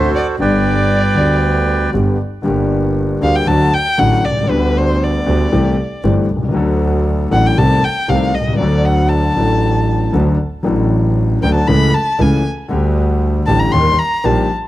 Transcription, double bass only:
0, 0, Header, 1, 2, 480
1, 0, Start_track
1, 0, Tempo, 512821
1, 365, Time_signature, 4, 2, 24, 8
1, 13740, End_track
2, 0, Start_track
2, 0, Title_t, "Double bass"
2, 0, Program_c, 0, 43
2, 367, Note_on_c, 0, 31, 78
2, 1051, Note_off_c, 0, 31, 0
2, 1090, Note_on_c, 0, 38, 68
2, 1776, Note_off_c, 0, 38, 0
2, 1815, Note_on_c, 0, 31, 71
2, 2016, Note_off_c, 0, 31, 0
2, 2295, Note_on_c, 0, 31, 75
2, 2979, Note_off_c, 0, 31, 0
2, 3010, Note_on_c, 0, 38, 72
2, 3213, Note_off_c, 0, 38, 0
2, 3250, Note_on_c, 0, 38, 73
2, 3454, Note_off_c, 0, 38, 0
2, 3730, Note_on_c, 0, 33, 74
2, 3933, Note_off_c, 0, 33, 0
2, 3964, Note_on_c, 0, 36, 50
2, 4194, Note_off_c, 0, 36, 0
2, 4200, Note_on_c, 0, 38, 76
2, 4891, Note_off_c, 0, 38, 0
2, 4930, Note_on_c, 0, 38, 82
2, 5133, Note_off_c, 0, 38, 0
2, 5171, Note_on_c, 0, 36, 80
2, 5373, Note_off_c, 0, 36, 0
2, 5657, Note_on_c, 0, 31, 76
2, 5855, Note_off_c, 0, 31, 0
2, 5895, Note_on_c, 0, 36, 52
2, 6126, Note_off_c, 0, 36, 0
2, 6132, Note_on_c, 0, 38, 76
2, 6814, Note_off_c, 0, 38, 0
2, 6852, Note_on_c, 0, 33, 76
2, 7052, Note_off_c, 0, 33, 0
2, 7091, Note_on_c, 0, 36, 84
2, 7291, Note_off_c, 0, 36, 0
2, 7571, Note_on_c, 0, 36, 68
2, 7771, Note_off_c, 0, 36, 0
2, 7815, Note_on_c, 0, 36, 51
2, 8043, Note_off_c, 0, 36, 0
2, 8049, Note_on_c, 0, 38, 72
2, 8733, Note_off_c, 0, 38, 0
2, 8770, Note_on_c, 0, 33, 81
2, 9456, Note_off_c, 0, 33, 0
2, 9487, Note_on_c, 0, 38, 72
2, 9692, Note_off_c, 0, 38, 0
2, 9968, Note_on_c, 0, 33, 76
2, 10656, Note_off_c, 0, 33, 0
2, 10688, Note_on_c, 0, 38, 67
2, 10893, Note_off_c, 0, 38, 0
2, 10934, Note_on_c, 0, 37, 87
2, 11136, Note_off_c, 0, 37, 0
2, 11411, Note_on_c, 0, 37, 80
2, 11614, Note_off_c, 0, 37, 0
2, 11892, Note_on_c, 0, 38, 71
2, 12576, Note_off_c, 0, 38, 0
2, 12607, Note_on_c, 0, 33, 82
2, 12811, Note_off_c, 0, 33, 0
2, 12849, Note_on_c, 0, 39, 78
2, 13051, Note_off_c, 0, 39, 0
2, 13333, Note_on_c, 0, 34, 83
2, 13532, Note_off_c, 0, 34, 0
2, 13740, End_track
0, 0, End_of_file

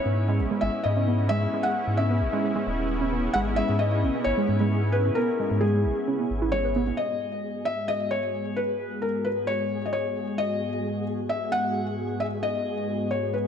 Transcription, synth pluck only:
0, 0, Header, 1, 2, 480
1, 0, Start_track
1, 0, Key_signature, 5, "minor"
1, 0, Tempo, 454545
1, 1619, Time_signature, 4, 2, 24, 8
1, 14226, End_track
2, 0, Start_track
2, 0, Title_t, "Synth pluck"
2, 0, Program_c, 0, 84
2, 60, Note_on_c, 0, 59, 78
2, 166, Note_off_c, 0, 59, 0
2, 300, Note_on_c, 0, 56, 101
2, 406, Note_off_c, 0, 56, 0
2, 420, Note_on_c, 0, 56, 75
2, 526, Note_off_c, 0, 56, 0
2, 539, Note_on_c, 0, 56, 101
2, 646, Note_off_c, 0, 56, 0
2, 659, Note_on_c, 0, 56, 86
2, 773, Note_off_c, 0, 56, 0
2, 1020, Note_on_c, 0, 61, 77
2, 1134, Note_off_c, 0, 61, 0
2, 1139, Note_on_c, 0, 59, 82
2, 1245, Note_off_c, 0, 59, 0
2, 1380, Note_on_c, 0, 56, 102
2, 1486, Note_off_c, 0, 56, 0
2, 1500, Note_on_c, 0, 56, 76
2, 1606, Note_off_c, 0, 56, 0
2, 1621, Note_on_c, 0, 56, 102
2, 1726, Note_off_c, 0, 56, 0
2, 1740, Note_on_c, 0, 56, 79
2, 1854, Note_off_c, 0, 56, 0
2, 2101, Note_on_c, 0, 61, 83
2, 2214, Note_off_c, 0, 61, 0
2, 2220, Note_on_c, 0, 59, 79
2, 2326, Note_off_c, 0, 59, 0
2, 2460, Note_on_c, 0, 56, 102
2, 2566, Note_off_c, 0, 56, 0
2, 2580, Note_on_c, 0, 56, 87
2, 2686, Note_off_c, 0, 56, 0
2, 2700, Note_on_c, 0, 56, 102
2, 2806, Note_off_c, 0, 56, 0
2, 2818, Note_on_c, 0, 56, 78
2, 2933, Note_off_c, 0, 56, 0
2, 3179, Note_on_c, 0, 61, 80
2, 3293, Note_off_c, 0, 61, 0
2, 3299, Note_on_c, 0, 59, 79
2, 3405, Note_off_c, 0, 59, 0
2, 3539, Note_on_c, 0, 56, 100
2, 3645, Note_off_c, 0, 56, 0
2, 3659, Note_on_c, 0, 56, 78
2, 3765, Note_off_c, 0, 56, 0
2, 3779, Note_on_c, 0, 56, 100
2, 3885, Note_off_c, 0, 56, 0
2, 3899, Note_on_c, 0, 56, 77
2, 4013, Note_off_c, 0, 56, 0
2, 4259, Note_on_c, 0, 61, 76
2, 4373, Note_off_c, 0, 61, 0
2, 4379, Note_on_c, 0, 59, 77
2, 4485, Note_off_c, 0, 59, 0
2, 4619, Note_on_c, 0, 56, 106
2, 4726, Note_off_c, 0, 56, 0
2, 4739, Note_on_c, 0, 56, 75
2, 4845, Note_off_c, 0, 56, 0
2, 4859, Note_on_c, 0, 56, 99
2, 4965, Note_off_c, 0, 56, 0
2, 4979, Note_on_c, 0, 56, 82
2, 5093, Note_off_c, 0, 56, 0
2, 5339, Note_on_c, 0, 61, 80
2, 5453, Note_off_c, 0, 61, 0
2, 5458, Note_on_c, 0, 59, 83
2, 5565, Note_off_c, 0, 59, 0
2, 5699, Note_on_c, 0, 56, 97
2, 5805, Note_off_c, 0, 56, 0
2, 5820, Note_on_c, 0, 56, 77
2, 5926, Note_off_c, 0, 56, 0
2, 5938, Note_on_c, 0, 56, 101
2, 6045, Note_off_c, 0, 56, 0
2, 6060, Note_on_c, 0, 56, 78
2, 6173, Note_off_c, 0, 56, 0
2, 6419, Note_on_c, 0, 61, 83
2, 6533, Note_off_c, 0, 61, 0
2, 6538, Note_on_c, 0, 59, 76
2, 6645, Note_off_c, 0, 59, 0
2, 6778, Note_on_c, 0, 64, 103
2, 6885, Note_off_c, 0, 64, 0
2, 6898, Note_on_c, 0, 56, 84
2, 6962, Note_off_c, 0, 56, 0
2, 7019, Note_on_c, 0, 71, 79
2, 7125, Note_off_c, 0, 71, 0
2, 7140, Note_on_c, 0, 59, 105
2, 7203, Note_off_c, 0, 59, 0
2, 7259, Note_on_c, 0, 59, 79
2, 7366, Note_off_c, 0, 59, 0
2, 14226, End_track
0, 0, End_of_file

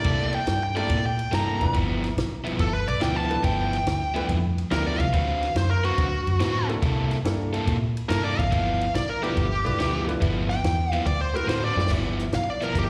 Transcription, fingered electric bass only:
0, 0, Header, 1, 2, 480
1, 0, Start_track
1, 0, Tempo, 423430
1, 56, Time_signature, 4, 2, 24, 8
1, 14620, End_track
2, 0, Start_track
2, 0, Title_t, "Fingered electric bass"
2, 0, Program_c, 0, 33
2, 56, Note_on_c, 0, 36, 87
2, 449, Note_off_c, 0, 36, 0
2, 542, Note_on_c, 0, 43, 93
2, 932, Note_off_c, 0, 43, 0
2, 1024, Note_on_c, 0, 46, 87
2, 1414, Note_off_c, 0, 46, 0
2, 1503, Note_on_c, 0, 43, 91
2, 1768, Note_off_c, 0, 43, 0
2, 1821, Note_on_c, 0, 29, 88
2, 1948, Note_off_c, 0, 29, 0
2, 1977, Note_on_c, 0, 31, 91
2, 2370, Note_off_c, 0, 31, 0
2, 2462, Note_on_c, 0, 35, 94
2, 2853, Note_off_c, 0, 35, 0
2, 2944, Note_on_c, 0, 31, 93
2, 3208, Note_off_c, 0, 31, 0
2, 3271, Note_on_c, 0, 35, 92
2, 3394, Note_off_c, 0, 35, 0
2, 3420, Note_on_c, 0, 38, 89
2, 3812, Note_off_c, 0, 38, 0
2, 3902, Note_on_c, 0, 31, 96
2, 4293, Note_off_c, 0, 31, 0
2, 4384, Note_on_c, 0, 38, 91
2, 4774, Note_off_c, 0, 38, 0
2, 4860, Note_on_c, 0, 41, 96
2, 5252, Note_off_c, 0, 41, 0
2, 5342, Note_on_c, 0, 38, 94
2, 5607, Note_off_c, 0, 38, 0
2, 5664, Note_on_c, 0, 36, 90
2, 5790, Note_off_c, 0, 36, 0
2, 5819, Note_on_c, 0, 38, 93
2, 6211, Note_off_c, 0, 38, 0
2, 6292, Note_on_c, 0, 42, 93
2, 6687, Note_off_c, 0, 42, 0
2, 6781, Note_on_c, 0, 38, 90
2, 7046, Note_off_c, 0, 38, 0
2, 7106, Note_on_c, 0, 42, 89
2, 7231, Note_off_c, 0, 42, 0
2, 7257, Note_on_c, 0, 45, 96
2, 7650, Note_off_c, 0, 45, 0
2, 7736, Note_on_c, 0, 36, 93
2, 8129, Note_off_c, 0, 36, 0
2, 8216, Note_on_c, 0, 43, 90
2, 8609, Note_off_c, 0, 43, 0
2, 8700, Note_on_c, 0, 46, 92
2, 9091, Note_off_c, 0, 46, 0
2, 9175, Note_on_c, 0, 43, 98
2, 9442, Note_off_c, 0, 43, 0
2, 9509, Note_on_c, 0, 33, 87
2, 9632, Note_off_c, 0, 33, 0
2, 9660, Note_on_c, 0, 31, 91
2, 10051, Note_off_c, 0, 31, 0
2, 10145, Note_on_c, 0, 35, 96
2, 10534, Note_off_c, 0, 35, 0
2, 10626, Note_on_c, 0, 31, 88
2, 10889, Note_off_c, 0, 31, 0
2, 10954, Note_on_c, 0, 35, 98
2, 11075, Note_off_c, 0, 35, 0
2, 11105, Note_on_c, 0, 38, 95
2, 11494, Note_off_c, 0, 38, 0
2, 11589, Note_on_c, 0, 31, 101
2, 11976, Note_off_c, 0, 31, 0
2, 12053, Note_on_c, 0, 40, 99
2, 12447, Note_off_c, 0, 40, 0
2, 12542, Note_on_c, 0, 38, 93
2, 12932, Note_off_c, 0, 38, 0
2, 13004, Note_on_c, 0, 45, 97
2, 13276, Note_off_c, 0, 45, 0
2, 13333, Note_on_c, 0, 42, 92
2, 13463, Note_off_c, 0, 42, 0
2, 13504, Note_on_c, 0, 31, 82
2, 13893, Note_off_c, 0, 31, 0
2, 13975, Note_on_c, 0, 35, 86
2, 14369, Note_off_c, 0, 35, 0
2, 14457, Note_on_c, 0, 31, 85
2, 14620, Note_off_c, 0, 31, 0
2, 14620, End_track
0, 0, End_of_file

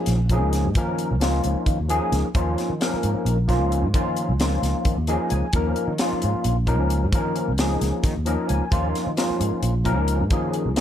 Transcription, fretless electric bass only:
0, 0, Header, 1, 3, 480
1, 0, Start_track
1, 0, Tempo, 454890
1, 804, Time_signature, 7, 3, 24, 8
1, 11401, End_track
2, 0, Start_track
2, 0, Title_t, "Fretless electric bass"
2, 0, Program_c, 0, 35
2, 73, Note_on_c, 0, 34, 86
2, 442, Note_off_c, 0, 34, 0
2, 442, Note_on_c, 0, 37, 71
2, 685, Note_on_c, 0, 44, 78
2, 701, Note_off_c, 0, 37, 0
2, 784, Note_off_c, 0, 44, 0
2, 795, Note_on_c, 0, 51, 78
2, 1169, Note_on_c, 0, 37, 74
2, 1185, Note_off_c, 0, 51, 0
2, 1465, Note_off_c, 0, 37, 0
2, 1526, Note_on_c, 0, 37, 78
2, 1625, Note_off_c, 0, 37, 0
2, 1763, Note_on_c, 0, 51, 92
2, 1863, Note_off_c, 0, 51, 0
2, 1895, Note_on_c, 0, 39, 73
2, 2090, Note_off_c, 0, 39, 0
2, 2237, Note_on_c, 0, 37, 93
2, 2340, Note_off_c, 0, 37, 0
2, 2480, Note_on_c, 0, 39, 78
2, 2681, Note_off_c, 0, 39, 0
2, 2843, Note_on_c, 0, 51, 73
2, 2943, Note_off_c, 0, 51, 0
2, 3203, Note_on_c, 0, 44, 81
2, 3304, Note_off_c, 0, 44, 0
2, 3430, Note_on_c, 0, 34, 84
2, 3809, Note_off_c, 0, 34, 0
2, 3809, Note_on_c, 0, 37, 71
2, 4036, Note_on_c, 0, 44, 77
2, 4052, Note_off_c, 0, 37, 0
2, 4139, Note_off_c, 0, 44, 0
2, 4157, Note_on_c, 0, 51, 78
2, 4522, Note_on_c, 0, 37, 78
2, 4537, Note_off_c, 0, 51, 0
2, 4821, Note_off_c, 0, 37, 0
2, 4878, Note_on_c, 0, 37, 79
2, 4981, Note_off_c, 0, 37, 0
2, 5125, Note_on_c, 0, 51, 81
2, 5225, Note_off_c, 0, 51, 0
2, 5244, Note_on_c, 0, 39, 72
2, 5443, Note_off_c, 0, 39, 0
2, 5608, Note_on_c, 0, 37, 88
2, 5706, Note_off_c, 0, 37, 0
2, 5837, Note_on_c, 0, 39, 79
2, 6039, Note_off_c, 0, 39, 0
2, 6198, Note_on_c, 0, 51, 73
2, 6300, Note_off_c, 0, 51, 0
2, 6578, Note_on_c, 0, 44, 82
2, 6672, Note_off_c, 0, 44, 0
2, 6800, Note_on_c, 0, 34, 90
2, 7164, Note_off_c, 0, 34, 0
2, 7164, Note_on_c, 0, 37, 75
2, 7423, Note_on_c, 0, 44, 85
2, 7439, Note_off_c, 0, 37, 0
2, 7515, Note_off_c, 0, 44, 0
2, 7523, Note_on_c, 0, 51, 74
2, 7893, Note_on_c, 0, 37, 65
2, 7909, Note_off_c, 0, 51, 0
2, 8187, Note_off_c, 0, 37, 0
2, 8244, Note_on_c, 0, 37, 80
2, 8344, Note_off_c, 0, 37, 0
2, 8481, Note_on_c, 0, 51, 89
2, 8581, Note_off_c, 0, 51, 0
2, 8615, Note_on_c, 0, 39, 78
2, 8809, Note_off_c, 0, 39, 0
2, 8968, Note_on_c, 0, 37, 99
2, 9065, Note_off_c, 0, 37, 0
2, 9200, Note_on_c, 0, 39, 84
2, 9400, Note_off_c, 0, 39, 0
2, 9566, Note_on_c, 0, 51, 77
2, 9664, Note_off_c, 0, 51, 0
2, 9922, Note_on_c, 0, 44, 86
2, 10022, Note_off_c, 0, 44, 0
2, 10155, Note_on_c, 0, 34, 102
2, 10513, Note_off_c, 0, 34, 0
2, 10513, Note_on_c, 0, 37, 75
2, 10763, Note_on_c, 0, 44, 80
2, 10779, Note_off_c, 0, 37, 0
2, 10862, Note_off_c, 0, 44, 0
2, 10879, Note_on_c, 0, 51, 77
2, 11242, Note_on_c, 0, 37, 74
2, 11258, Note_off_c, 0, 51, 0
2, 11401, Note_off_c, 0, 37, 0
2, 11401, End_track
3, 0, Start_track
3, 0, Title_t, "Muted fretless electric bass strokes"
3, 2370, Note_on_c, 9, 29, 35
3, 2475, Note_off_c, 9, 29, 0
3, 3096, Note_on_c, 9, 29, 35
3, 3202, Note_off_c, 9, 29, 0
3, 3319, Note_on_c, 9, 29, 31
3, 3424, Note_off_c, 9, 29, 0
3, 5715, Note_on_c, 9, 29, 34
3, 5820, Note_off_c, 9, 29, 0
3, 6463, Note_on_c, 9, 29, 31
3, 6568, Note_off_c, 9, 29, 0
3, 6690, Note_on_c, 9, 29, 32
3, 6796, Note_off_c, 9, 29, 0
3, 9092, Note_on_c, 9, 29, 37
3, 9197, Note_off_c, 9, 29, 0
3, 9814, Note_on_c, 9, 29, 33
3, 9919, Note_off_c, 9, 29, 0
3, 10048, Note_on_c, 9, 29, 31
3, 10154, Note_off_c, 9, 29, 0
3, 11401, End_track
0, 0, End_of_file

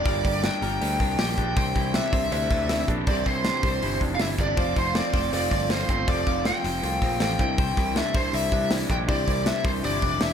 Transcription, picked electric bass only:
0, 0, Header, 1, 2, 480
1, 0, Start_track
1, 0, Tempo, 376176
1, 69, Time_signature, 4, 2, 24, 8
1, 13182, End_track
2, 0, Start_track
2, 0, Title_t, "Picked electric bass"
2, 0, Program_c, 0, 34
2, 72, Note_on_c, 0, 31, 104
2, 275, Note_off_c, 0, 31, 0
2, 315, Note_on_c, 0, 31, 111
2, 620, Note_off_c, 0, 31, 0
2, 791, Note_on_c, 0, 31, 92
2, 996, Note_off_c, 0, 31, 0
2, 1038, Note_on_c, 0, 38, 89
2, 1240, Note_off_c, 0, 38, 0
2, 1277, Note_on_c, 0, 36, 95
2, 1479, Note_off_c, 0, 36, 0
2, 1518, Note_on_c, 0, 34, 85
2, 1720, Note_off_c, 0, 34, 0
2, 1757, Note_on_c, 0, 34, 87
2, 1960, Note_off_c, 0, 34, 0
2, 1999, Note_on_c, 0, 36, 102
2, 2201, Note_off_c, 0, 36, 0
2, 2242, Note_on_c, 0, 36, 107
2, 2546, Note_off_c, 0, 36, 0
2, 2716, Note_on_c, 0, 36, 116
2, 2920, Note_off_c, 0, 36, 0
2, 2956, Note_on_c, 0, 38, 104
2, 3160, Note_off_c, 0, 38, 0
2, 3196, Note_on_c, 0, 38, 87
2, 3605, Note_off_c, 0, 38, 0
2, 3679, Note_on_c, 0, 34, 89
2, 3882, Note_off_c, 0, 34, 0
2, 3919, Note_on_c, 0, 36, 103
2, 4122, Note_off_c, 0, 36, 0
2, 4161, Note_on_c, 0, 36, 115
2, 4466, Note_off_c, 0, 36, 0
2, 4637, Note_on_c, 0, 36, 96
2, 4841, Note_off_c, 0, 36, 0
2, 4880, Note_on_c, 0, 31, 86
2, 5083, Note_off_c, 0, 31, 0
2, 5115, Note_on_c, 0, 29, 108
2, 5321, Note_off_c, 0, 29, 0
2, 5357, Note_on_c, 0, 31, 80
2, 5562, Note_off_c, 0, 31, 0
2, 5593, Note_on_c, 0, 31, 91
2, 5800, Note_off_c, 0, 31, 0
2, 5838, Note_on_c, 0, 29, 102
2, 6042, Note_off_c, 0, 29, 0
2, 6080, Note_on_c, 0, 29, 90
2, 6385, Note_off_c, 0, 29, 0
2, 6554, Note_on_c, 0, 29, 96
2, 6759, Note_off_c, 0, 29, 0
2, 6796, Note_on_c, 0, 29, 93
2, 7001, Note_off_c, 0, 29, 0
2, 7033, Note_on_c, 0, 31, 92
2, 7443, Note_off_c, 0, 31, 0
2, 7517, Note_on_c, 0, 31, 91
2, 7721, Note_off_c, 0, 31, 0
2, 7759, Note_on_c, 0, 29, 101
2, 7962, Note_off_c, 0, 29, 0
2, 7999, Note_on_c, 0, 29, 97
2, 8304, Note_off_c, 0, 29, 0
2, 8478, Note_on_c, 0, 29, 110
2, 8681, Note_off_c, 0, 29, 0
2, 8717, Note_on_c, 0, 36, 95
2, 8920, Note_off_c, 0, 36, 0
2, 8954, Note_on_c, 0, 34, 87
2, 9158, Note_off_c, 0, 34, 0
2, 9197, Note_on_c, 0, 33, 101
2, 9400, Note_off_c, 0, 33, 0
2, 9435, Note_on_c, 0, 36, 105
2, 9842, Note_off_c, 0, 36, 0
2, 9918, Note_on_c, 0, 36, 104
2, 10222, Note_off_c, 0, 36, 0
2, 10396, Note_on_c, 0, 36, 99
2, 10598, Note_off_c, 0, 36, 0
2, 10632, Note_on_c, 0, 36, 95
2, 10836, Note_off_c, 0, 36, 0
2, 10874, Note_on_c, 0, 36, 79
2, 11280, Note_off_c, 0, 36, 0
2, 11351, Note_on_c, 0, 34, 107
2, 11555, Note_off_c, 0, 34, 0
2, 11596, Note_on_c, 0, 36, 104
2, 11797, Note_off_c, 0, 36, 0
2, 11835, Note_on_c, 0, 36, 100
2, 12139, Note_off_c, 0, 36, 0
2, 12309, Note_on_c, 0, 36, 109
2, 12513, Note_off_c, 0, 36, 0
2, 12553, Note_on_c, 0, 31, 90
2, 12755, Note_off_c, 0, 31, 0
2, 12792, Note_on_c, 0, 29, 101
2, 12994, Note_off_c, 0, 29, 0
2, 13033, Note_on_c, 0, 28, 104
2, 13182, Note_off_c, 0, 28, 0
2, 13182, End_track
0, 0, End_of_file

